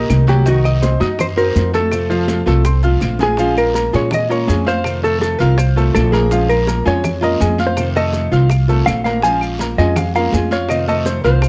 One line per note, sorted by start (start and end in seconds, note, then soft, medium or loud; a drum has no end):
0.00 0.21 D#4 medium
0.00 0.28 A#4 loud
0.00 0.21 D#5 medium
0.00 0.22 D#6 medium
0.09 0.95 C2 loud
0.09 0.45 D#3 soft
0.09 0.45 A#3 soft
0.09 0.46 D#4 medium
0.09 0.46 G4 medium
0.09 high bongo soft
0.09 low bongo medium
0.09 high conga medium
0.09 short guiro medium
0.09 claves medium
0.09 maracas medium
0.27 0.43 F#3 medium
0.27 0.43 F#4 medium
0.27 0.47 G4 loud
0.27 0.43 F#5 medium
0.27 high bongo soft
0.27 high conga medium
0.27 short guiro medium
0.27 maracas soft
0.45 0.76 D#3 medium
0.45 1.03 C4 medium
0.45 0.76 D#4 medium
0.45 1.00 D#4 medium
0.45 0.99 F#4 medium
0.45 0.66 F#4 loud
0.45 0.76 D#5 medium
0.45 high bongo medium
0.45 long guiro medium
0.45 maracas medium
0.65 1.20 D#5 loud
0.65 high conga soft
0.65 claves medium
0.65 maracas soft
0.82 0.97 C4 medium
0.82 0.97 C5 medium
0.82 0.97 C6 medium
0.82 high bongo medium
0.82 high conga medium
0.82 short guiro medium
0.82 maracas medium
1.00 1.52 F#2 medium
1.00 1.30 D#4 medium
1.00 1.18 D#4 medium
1.00 1.18 F#4 medium
1.00 1.31 D#5 medium
1.00 1.31 D#6 medium
1.00 high bongo soft
1.00 high conga medium
1.00 short guiro medium
1.00 maracas soft
1.19 1.26 C5 loud
1.19 muted nylon-string guitar stroke medium
1.19 high bongo medium
1.19 high conga soft
1.19 low conga medium
1.19 long guiro medium
1.19 claves medium
1.19 maracas medium
1.36 1.67 C4 medium
1.36 1.55 D#4 medium
1.36 1.55 F#4 medium
1.36 1.75 A#4 medium
1.36 1.67 C5 medium
1.36 1.67 C6 medium
1.36 high bongo soft
1.36 high conga soft
1.36 maracas soft
1.55 2.41 F2 loud
1.55 1.91 C4 medium
1.55 1.92 D#4 medium
1.55 1.92 F#4 medium
1.55 high bongo soft
1.55 low bongo medium
1.55 high conga medium
1.55 short guiro medium
1.55 maracas medium
1.74 2.04 A3 medium
1.74 2.04 A4 medium
1.74 3.17 A4 medium
1.74 2.04 A5 medium
1.74 high bongo soft
1.74 high conga medium
1.74 short guiro medium
1.74 maracas soft
1.91 2.46 C3 medium
1.91 2.46 F3 medium
1.91 2.46 A3 medium
1.91 2.46 C4 medium
1.91 2.45 F4 medium
1.91 high bongo medium
1.91 long guiro medium
1.91 claves medium
1.91 maracas medium
2.10 2.40 F3 medium
2.10 2.40 F4 medium
2.10 2.41 F5 medium
2.10 high conga soft
2.10 maracas soft
2.28 high bongo medium
2.28 high conga medium
2.28 short guiro medium
2.28 maracas medium
2.46 2.98 C2 medium
2.46 2.64 F3 medium
2.46 2.62 A3 medium
2.46 2.64 A3 medium
2.46 2.65 C4 medium
2.46 2.64 F4 medium
2.46 2.62 A4 medium
2.46 2.62 A5 medium
2.46 high bongo soft
2.46 high conga soft
2.46 short guiro medium
2.46 maracas soft
2.65 2.80 C4 medium
2.65 2.80 C5 medium
2.65 2.81 C6 medium
2.65 muted nylon-string guitar stroke medium
2.65 high bongo medium
2.65 high conga soft
2.65 long guiro medium
2.65 claves medium
2.65 maracas medium
2.83 3.00 F3 medium
2.83 3.01 A3 medium
2.83 3.01 C4 medium
2.83 3.13 F4 medium
2.83 3.01 F4 medium
2.83 3.14 F5 medium
2.83 3.14 F6 medium
2.83 high bongo medium
2.83 high conga soft
2.83 maracas soft
3.01 3.87 A#1 medium
3.01 3.36 F3 medium
3.01 3.38 A3 medium
3.01 3.38 C4 medium
3.01 3.39 F4 medium
3.01 low bongo medium
3.01 high conga medium
3.01 short guiro medium
3.01 claves medium
3.01 maracas medium
3.19 3.35 G#3 medium
3.19 3.35 G#4 medium
3.19 3.56 G#4 medium
3.19 3.35 G#5 medium
3.19 low bongo medium
3.19 high conga medium
3.19 short guiro medium
3.19 maracas soft
3.37 4.11 F3 medium
3.37 3.68 F3 medium
3.37 3.93 G#3 medium
3.37 3.93 C#4 medium
3.37 3.69 F4 medium
3.37 3.93 F4 medium
3.37 3.69 F5 medium
3.37 high bongo medium
3.37 high conga soft
3.37 long guiro medium
3.37 maracas medium
3.56 3.95 A#4 loud
3.56 high bongo soft
3.56 high conga soft
3.56 claves medium
3.56 maracas soft
3.74 3.90 A#3 medium
3.74 3.90 A#4 medium
3.74 3.90 A#5 medium
3.74 high bongo medium
3.74 high conga medium
3.74 short guiro medium
3.74 maracas medium
3.93 4.45 A#2 medium
3.93 4.23 G#3 medium
3.93 4.11 G#3 medium
3.93 4.11 C#4 medium
3.93 4.11 F4 medium
3.93 4.24 G#4 medium
3.93 4.13 C#5 loud
3.93 4.24 G#5 medium
3.93 high bongo soft
3.93 high conga soft
3.93 short guiro medium
3.93 maracas soft
4.11 4.31 D#5 loud
4.11 muted nylon-string guitar stroke medium
4.11 high bongo medium
4.11 high conga soft
4.11 low conga medium
4.11 long guiro medium
4.11 claves medium
4.11 maracas medium
4.29 4.48 G#3 medium
4.29 4.45 A#3 medium
4.29 4.48 C#4 medium
4.29 4.47 F4 medium
4.29 4.45 A#4 medium
4.29 4.65 C#5 loud
4.29 4.45 A#5 medium
4.29 high bongo soft
4.29 high conga soft
4.29 maracas soft
4.47 5.34 F2 medium
4.47 4.84 F3 medium
4.47 4.63 G#3 medium
4.47 4.84 G#3 medium
4.47 4.85 C#4 medium
4.47 4.85 F4 medium
4.47 4.63 G#4 medium
4.47 4.63 G#5 medium
4.47 high bongo soft
4.47 low bongo medium
4.47 high conga medium
4.47 short guiro medium
4.47 maracas medium
4.65 4.97 F4 medium
4.65 5.04 C5 loud
4.65 4.97 F5 medium
4.65 4.97 F6 medium
4.65 high conga medium
4.65 short guiro medium
4.65 maracas soft
4.84 5.39 C3 medium
4.84 5.39 D#3 medium
4.84 5.39 A3 medium
4.84 5.40 C4 medium
4.84 5.40 F4 medium
4.84 high bongo medium
4.84 high conga soft
4.84 long guiro medium
4.84 claves medium
4.84 maracas medium
5.03 5.33 A3 medium
5.03 5.33 A4 medium
5.03 5.20 A4 loud
5.03 5.34 A5 medium
5.03 high bongo soft
5.03 high conga soft
5.03 maracas soft
5.20 5.39 A4 medium
5.20 high bongo medium
5.20 high conga medium
5.20 short guiro medium
5.20 maracas medium
5.39 5.91 C2 loud
5.39 5.57 D#3 medium
5.39 5.58 A3 medium
5.39 5.58 C4 medium
5.39 5.57 F4 medium
5.39 5.70 F4 medium
5.39 5.58 A#4 medium
5.39 5.70 F5 medium
5.39 5.70 F6 medium
5.39 high bongo soft
5.39 high conga soft
5.39 short guiro medium
5.39 maracas soft
5.58 5.94 C5 loud
5.58 muted nylon-string guitar stroke medium
5.58 high bongo medium
5.58 high conga soft
5.58 long guiro medium
5.58 claves medium
5.58 maracas medium
5.76 5.93 D#3 medium
5.76 6.07 A3 medium
5.76 5.94 A3 medium
5.76 5.94 C4 medium
5.76 5.94 F4 medium
5.76 6.07 A4 medium
5.76 6.07 A5 medium
5.76 high bongo soft
5.76 high conga soft
5.76 maracas soft
5.94 6.80 A#1 loud
5.94 6.29 D#3 medium
5.94 6.30 A3 medium
5.94 6.31 C4 medium
5.94 6.31 F4 medium
5.94 6.13 A4 medium
5.94 high bongo soft
5.94 low bongo medium
5.94 high conga medium
5.94 short guiro medium
5.94 claves medium
5.94 maracas medium
6.12 6.28 A#3 medium
6.12 6.50 G#4 medium
6.12 6.28 A#4 medium
6.12 6.28 A#5 medium
6.12 high conga medium
6.12 short guiro medium
6.12 maracas soft
6.30 7.03 F3 medium
6.30 6.61 F3 medium
6.30 6.85 G#3 medium
6.30 6.85 C#4 medium
6.30 6.61 F4 medium
6.30 6.85 F4 medium
6.30 6.62 F5 medium
6.30 high bongo medium
6.30 high conga soft
6.30 long guiro medium
6.30 maracas medium
6.49 6.87 A#4 loud
6.49 high bongo soft
6.49 high conga soft
6.49 claves medium
6.49 maracas soft
6.67 6.83 A#3 medium
6.67 6.83 A#4 medium
6.67 6.83 A#5 medium
6.67 high bongo medium
6.67 high conga medium
6.67 short guiro medium
6.67 maracas medium
6.85 7.37 F2 medium
6.85 7.16 G#3 medium
6.85 7.03 G#3 medium
6.85 7.03 C#4 medium
6.85 7.03 F4 medium
6.85 7.16 G#4 medium
6.85 7.24 C#5 loud
6.85 7.16 G#5 medium
6.85 high bongo soft
6.85 high conga soft
6.85 short guiro medium
6.85 maracas soft
7.04 muted nylon-string guitar stroke medium
7.04 high bongo medium
7.04 high conga soft
7.04 low conga medium
7.04 long guiro medium
7.04 claves medium
7.04 maracas medium
7.21 7.40 G#3 medium
7.21 7.37 A#3 medium
7.21 7.40 C#4 medium
7.21 7.39 F4 medium
7.21 7.38 A#4 medium
7.21 7.57 D#5 medium
7.21 7.38 A#5 medium
7.21 high bongo soft
7.21 high conga soft
7.21 maracas soft
7.40 8.26 F2 loud
7.40 7.76 F3 soft
7.40 7.56 G#3 medium
7.40 7.77 G#3 medium
7.40 7.77 C#4 medium
7.40 7.77 F4 medium
7.40 7.56 G#4 medium
7.40 7.56 G#5 medium
7.40 high bongo soft
7.40 low bongo medium
7.40 high conga medium
7.40 short guiro medium
7.40 maracas medium
7.58 7.89 F4 medium
7.58 7.89 F5 medium
7.58 7.89 F6 medium
7.58 high conga medium
7.58 short guiro medium
7.58 maracas soft
7.67 7.89 C5 medium
7.76 8.31 C3 medium
7.76 8.31 D#3 medium
7.76 8.32 A3 medium
7.76 8.31 C4 medium
7.76 8.31 F4 medium
7.76 high bongo medium
7.76 high conga soft
7.76 long guiro medium
7.76 claves medium
7.76 maracas medium
7.95 8.26 A3 medium
7.95 8.26 A4 medium
7.95 8.30 D#5 medium
7.95 8.26 A5 medium
7.95 high bongo soft
7.95 high conga soft
7.95 maracas soft
8.13 high bongo medium
8.13 high conga medium
8.13 short guiro medium
8.13 maracas medium
8.31 8.83 C2 medium
8.31 8.50 D#3 medium
8.31 8.50 A3 medium
8.31 8.50 C4 medium
8.31 8.49 F4 medium
8.31 8.62 F4 medium
8.31 8.62 F5 medium
8.31 8.62 F6 medium
8.31 high bongo soft
8.31 high conga soft
8.31 short guiro medium
8.31 maracas soft
8.50 muted nylon-string guitar stroke medium
8.50 high bongo medium
8.50 high conga soft
8.50 long guiro medium
8.50 claves medium
8.50 maracas medium
8.68 8.85 D#3 medium
8.68 8.99 A3 medium
8.68 8.86 A3 medium
8.68 8.86 C4 medium
8.68 8.86 F4 medium
8.68 8.99 A4 medium
8.68 8.99 A5 medium
8.68 high bongo soft
8.68 high conga soft
8.68 maracas soft
8.86 9.73 A#1 medium
8.86 9.22 D#3 medium
8.86 9.23 A3 medium
8.86 9.23 C4 medium
8.86 9.24 F4 medium
8.86 9.03 F5 loud
8.86 high bongo soft
8.86 low bongo medium
8.86 high conga medium
8.86 short guiro medium
8.86 claves medium
8.86 maracas medium
9.04 9.20 A#3 medium
9.04 9.20 A#4 medium
9.04 9.22 F5 medium
9.04 9.21 A#5 medium
9.04 high conga medium
9.04 short guiro medium
9.04 maracas soft
9.22 9.97 F3 medium
9.22 9.54 F3 medium
9.22 9.78 G#3 medium
9.22 9.78 C#4 medium
9.22 9.54 F4 medium
9.22 9.78 F4 medium
9.22 9.54 F5 medium
9.22 9.43 G#5 loud
9.22 high bongo medium
9.22 high conga soft
9.22 long guiro medium
9.22 maracas medium
9.41 9.78 F5 loud
9.41 high bongo soft
9.41 high conga soft
9.41 claves medium
9.41 maracas soft
9.59 9.75 A#3 medium
9.59 9.75 A#4 medium
9.59 9.76 A#5 medium
9.59 high bongo medium
9.59 high conga medium
9.59 short guiro medium
9.59 maracas medium
9.78 10.29 F2 medium
9.78 10.08 G#3 medium
9.78 9.97 G#3 medium
9.78 9.96 C#4 medium
9.78 9.96 F4 medium
9.78 10.09 G#4 medium
9.78 9.96 D#5 medium
9.78 10.09 G#5 medium
9.78 high bongo soft
9.78 high conga soft
9.78 short guiro medium
9.78 maracas soft
9.96 10.14 F5 loud
9.96 muted nylon-string guitar stroke medium
9.96 high bongo medium
9.96 high conga soft
9.96 low conga medium
9.96 long guiro medium
9.96 claves medium
9.96 maracas medium
10.14 10.33 G#3 medium
10.14 10.30 A#3 medium
10.14 10.33 C#4 medium
10.14 10.32 F4 medium
10.14 10.30 A#4 medium
10.14 10.49 F5 loud
10.14 10.30 A#5 medium
10.14 high bongo soft
10.14 high conga soft
10.14 maracas soft
10.32 11.19 F2 medium
10.32 10.69 F3 soft
10.32 10.48 G#3 medium
10.32 10.69 G#3 soft
10.32 10.69 C#4 medium
10.32 10.70 F4 medium
10.32 10.48 G#4 medium
10.32 10.49 G#5 medium
10.32 high bongo soft
10.32 low bongo medium
10.32 high conga medium
10.32 short guiro medium
10.32 maracas medium
10.51 10.81 F4 medium
10.51 10.71 C#5 medium
10.51 10.81 F5 medium
10.51 10.82 F6 medium
10.51 high conga medium
10.51 short guiro medium
10.51 maracas soft
10.69 11.23 C3 medium
10.69 11.24 D#3 medium
10.69 11.24 A3 medium
10.69 11.24 C4 medium
10.69 11.24 F4 medium
10.69 10.87 D#5 loud
10.69 high bongo medium
10.69 high conga soft
10.69 long guiro medium
10.69 claves medium
10.69 maracas medium
10.88 11.18 A3 medium
10.88 11.18 A4 medium
10.88 11.07 D#5 medium
10.88 11.18 A5 medium
10.88 high bongo soft
10.88 high conga soft
10.88 maracas soft
11.05 11.23 C5 loud
11.05 high bongo medium
11.05 high conga medium
11.05 short guiro medium
11.05 maracas medium
11.24 11.49 C2 medium
11.24 11.42 D#3 medium
11.24 11.42 A3 medium
11.24 11.42 C4 medium
11.24 11.42 F4 medium
11.24 11.49 F4 medium
11.24 11.49 C5 loud
11.24 11.49 F5 medium
11.24 11.49 F6 medium
11.24 high bongo soft
11.24 high conga soft
11.24 short guiro medium
11.24 maracas soft
11.42 muted nylon-string guitar stroke medium
11.42 high bongo medium
11.42 high conga soft
11.42 long guiro medium
11.42 claves medium
11.42 maracas medium